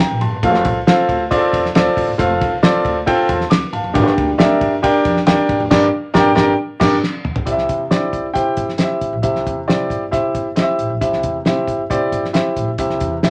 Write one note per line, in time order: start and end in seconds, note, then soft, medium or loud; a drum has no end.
0.00 0.20 G5 medium
0.00 0.20 A#5 medium
0.11 0.19 A#1 medium
0.21 0.38 G1 loud
0.21 0.63 A5 medium
0.21 0.63 C6 medium
0.21 ride medium
0.43 0.67 F1 loud
0.43 0.78 C4 medium
0.43 0.77 F4 medium
0.43 0.77 A4 medium
0.43 0.78 C5 medium
0.43 0.78 F5 medium
0.43 kick loud
0.43 ride medium
0.54 snare soft
0.65 0.82 C2 medium
0.65 kick loud
0.65 ride medium
0.87 1.21 C4 medium
0.87 1.21 F4 medium
0.87 1.22 A4 medium
0.87 1.21 C5 medium
0.87 1.22 F5 loud
0.87 snare loud
0.87 ride medium
0.98 muted upright bass stroke soft
1.09 1.26 D2 medium
1.09 kick medium
1.09 ride medium
1.31 1.65 C4 loud
1.31 1.65 F4 medium
1.31 1.36 G#4 medium
1.31 1.65 C5 medium
1.31 1.65 D5 loud
1.31 kick loud
1.31 ride medium
1.36 1.68 A4 medium
1.42 muted upright bass stroke soft
1.53 1.70 E2 medium
1.53 kick medium
1.53 ride medium
1.66 snare soft
1.75 1.84 D2 medium
1.75 2.10 C4 medium
1.75 2.10 F4 medium
1.75 2.10 A4 medium
1.75 2.10 C5 medium
1.75 2.10 D5 loud
1.75 snare loud
1.75 ride medium
1.97 2.05 F1 loud
1.97 kick medium
1.97 open hi-hat soft
1.97 ride soft
2.08 2.17 G1 medium
2.18 2.36 F1 loud
2.18 2.53 C4 medium
2.18 2.53 F4 medium
2.18 2.53 A4 medium
2.18 2.53 C5 medium
2.18 2.53 F5 medium
2.18 kick loud
2.18 hi-hat pedal medium
2.18 ride medium
2.41 2.58 C2 medium
2.41 kick loud
2.41 ride medium
2.63 2.97 C4 medium
2.63 2.97 F4 medium
2.63 2.97 A4 medium
2.63 2.97 C5 medium
2.63 2.97 D5 loud
2.63 snare loud
2.63 ride medium
2.75 muted upright bass stroke soft
2.85 3.02 D2 medium
2.85 kick medium
2.85 ride medium
3.06 3.41 C4 medium
3.06 3.41 F4 loud
3.06 3.41 A4 medium
3.06 3.41 C5 medium
3.06 3.29 G5 loud
3.06 kick loud
3.06 ride medium
3.18 muted upright bass stroke soft
3.29 3.46 E2 medium
3.29 3.50 A5 medium
3.29 3.50 C6 medium
3.29 kick medium
3.29 ride medium
3.41 snare soft
3.50 3.59 D2 medium
3.50 3.71 D6 medium
3.50 snare loud
3.50 ride medium
3.73 3.81 G1 medium
3.73 4.15 F5 medium
3.73 4.15 A5 medium
3.73 ride soft
3.84 3.92 F1 medium
3.94 4.12 G1 loud
3.94 4.56 G2 medium
3.94 4.28 D4 medium
3.94 4.28 G4 medium
3.94 4.29 A#4 medium
3.94 4.29 D5 medium
3.94 4.29 G5 medium
3.94 kick loud
3.94 ride medium
4.07 snare soft
4.18 4.34 D2 medium
4.18 kick loud
4.18 ride medium
4.38 4.56 D2 loud
4.38 4.73 D4 loud
4.38 4.73 G4 medium
4.38 4.44 A4 medium
4.38 4.73 D5 medium
4.38 4.73 E5 loud
4.38 snare loud
4.38 ride medium
4.44 4.76 A#4 medium
4.61 4.78 G2 medium
4.61 kick medium
4.61 ride medium
4.82 5.17 D4 medium
4.82 5.17 G4 medium
4.82 5.17 A#4 medium
4.82 5.17 D5 medium
4.82 5.17 G5 loud
4.82 kick loud
4.82 ride medium
4.94 muted upright bass stroke soft
5.05 5.22 F2 medium
5.05 kick medium
5.05 ride medium
5.17 snare soft
5.27 5.36 E2 medium
5.27 5.61 D4 medium
5.27 5.61 G4 medium
5.27 5.61 A#4 medium
5.27 5.61 D5 medium
5.27 5.61 G5 loud
5.27 snare loud
5.27 ride medium
5.49 5.57 G1 loud
5.49 kick medium
5.49 ride medium
5.60 5.68 F1 loud
5.70 5.86 G1 loud
5.70 5.86 G2 loud
5.70 5.86 D4 medium
5.70 5.86 G4 loud
5.70 5.86 A#4 medium
5.70 5.86 D5 loud
5.70 5.86 G5 loud
5.70 kick loud
5.70 snare loud
5.70 crash medium
6.14 6.30 G1 loud
6.14 6.29 D4 loud
6.14 6.29 G4 loud
6.14 6.29 A#4 loud
6.14 6.30 D5 loud
6.14 kick loud
6.14 snare loud
6.20 6.33 G5 loud
6.35 6.52 G1 loud
6.35 6.51 D4 loud
6.35 6.51 G4 loud
6.35 6.51 A#4 loud
6.35 6.51 D5 loud
6.35 kick loud
6.35 snare loud
6.41 6.54 G5 medium
6.80 6.96 G1 loud
6.80 6.95 D4 loud
6.80 6.95 G4 medium
6.80 6.95 A#4 medium
6.80 6.96 D5 loud
6.80 kick loud
6.80 snare loud
6.80 crash medium
7.04 snare medium
7.25 mid tom medium
7.36 floor tom loud
7.46 7.64 C2 medium
7.46 8.09 C3 medium
7.46 7.81 E4 medium
7.46 7.81 G4 medium
7.46 7.81 C5 medium
7.46 7.52 D5 medium
7.46 kick loud
7.46 closed hi-hat medium
7.52 7.84 E5 medium
7.58 snare soft
7.69 7.86 E2 medium
7.69 kick medium
7.69 closed hi-hat medium
7.91 8.08 C3 medium
7.91 7.96 D4 medium
7.91 8.25 G4 medium
7.91 8.25 C5 medium
7.91 8.25 D5 medium
7.91 snare medium
7.91 closed hi-hat medium
7.95 8.28 E4 medium
8.13 8.30 C2 medium
8.13 kick medium
8.13 closed hi-hat medium
8.34 8.53 C3 medium
8.34 8.69 E4 medium
8.34 8.69 G4 medium
8.34 8.69 C5 medium
8.34 8.69 G5 medium
8.34 kick medium
8.34 closed hi-hat medium
8.57 8.83 G1 medium
8.57 kick medium
8.57 closed hi-hat medium
8.69 snare soft
8.78 9.13 E4 medium
8.78 9.13 G4 medium
8.78 9.13 C5 medium
8.78 8.84 D#5 medium
8.78 snare medium
8.78 closed hi-hat medium
8.84 9.16 E5 medium
9.01 9.10 C2 medium
9.01 kick medium
9.01 closed hi-hat medium
9.13 9.21 A#1 medium
9.22 9.41 C2 medium
9.22 9.86 C3 medium
9.22 9.58 E4 medium
9.22 9.58 G4 medium
9.22 9.58 C5 medium
9.22 9.58 E5 medium
9.22 kick loud
9.22 closed hi-hat medium
9.35 snare soft
9.47 9.63 E2 medium
9.47 kick medium
9.47 closed hi-hat medium
9.67 9.85 C3 medium
9.67 10.02 E4 medium
9.67 10.03 G4 medium
9.67 10.03 C5 medium
9.67 10.03 D5 medium
9.67 snare medium
9.67 closed hi-hat medium
9.90 10.07 G1 medium
9.90 kick medium
9.90 closed hi-hat soft
10.11 10.30 C3 medium
10.11 10.47 E4 medium
10.11 10.47 G4 medium
10.11 10.47 C5 medium
10.11 10.47 E5 medium
10.11 kick loud
10.11 closed hi-hat medium
10.35 10.60 G1 medium
10.35 kick medium
10.35 closed hi-hat medium
10.56 10.91 E4 medium
10.56 10.91 G4 medium
10.56 10.91 C5 medium
10.56 10.62 D#5 medium
10.56 snare medium
10.56 closed hi-hat medium
10.62 10.94 E5 medium
10.79 10.87 A1 medium
10.79 closed hi-hat soft
10.90 10.99 A#1 medium
11.01 11.18 C2 loud
11.01 11.64 C3 medium
11.01 11.36 E4 medium
11.01 11.36 G4 medium
11.01 11.36 C5 medium
11.01 11.36 E5 medium
11.01 kick loud
11.01 closed hi-hat medium
11.13 snare soft
11.23 11.41 E2 medium
11.23 kick medium
11.23 closed hi-hat medium
11.45 11.62 C3 loud
11.45 11.80 E4 medium
11.45 11.81 G4 medium
11.45 11.81 C5 medium
11.45 11.81 E5 medium
11.45 snare medium
11.45 closed hi-hat medium
11.67 11.84 G1 medium
11.67 kick medium
11.67 closed hi-hat medium
11.90 12.07 C3 medium
11.90 12.24 E4 medium
11.90 12.25 G4 medium
11.90 12.24 C5 medium
11.90 12.25 D5 medium
11.90 kick loud
11.90 closed hi-hat medium
12.12 12.38 G1 medium
12.12 kick medium
12.12 closed hi-hat medium
12.25 snare soft
12.33 12.68 E4 medium
12.33 12.68 G4 medium
12.33 12.69 C5 medium
12.33 12.69 E5 medium
12.33 snare medium
12.33 closed hi-hat medium
12.56 12.65 A1 medium
12.56 kick medium
12.56 closed hi-hat medium
12.68 12.76 A#1 medium
12.78 12.95 C2 loud
12.78 13.30 C3 medium
12.78 13.13 E4 medium
12.78 13.13 G4 medium
12.78 13.13 C5 medium
12.78 13.13 E5 medium
12.78 kick loud
12.78 closed hi-hat medium
12.90 snare soft
13.00 13.18 E2 medium
13.00 kick medium
13.00 closed hi-hat medium
13.23 13.30 C3 medium
13.23 13.30 E4 medium
13.23 13.30 G4 medium
13.23 13.30 C5 medium
13.23 13.30 E5 medium
13.23 snare loud
13.23 closed hi-hat medium